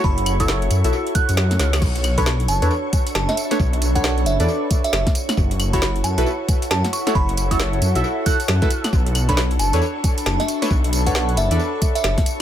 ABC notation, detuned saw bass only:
X:1
M:4/4
L:1/16
Q:"Swing 16ths" 1/4=135
K:Bm
V:1 name="Detuned saw bass" clef=bass
F,,,6 F,, B,,, z3 F,,3 C,,2 | B,,,6 F,,, E,, z4 F,,, z3 | B,,,6 F,,, E,, z4 F,,, z3 | F,,,6 F,, B,,, z4 F,, z3 |
F,,,6 F,, B,,, z4 F,, z3 | B,,,6 F,,, E,, z4 F,,, z3 | B,,,6 F,,, E,, z4 F,,, z3 |]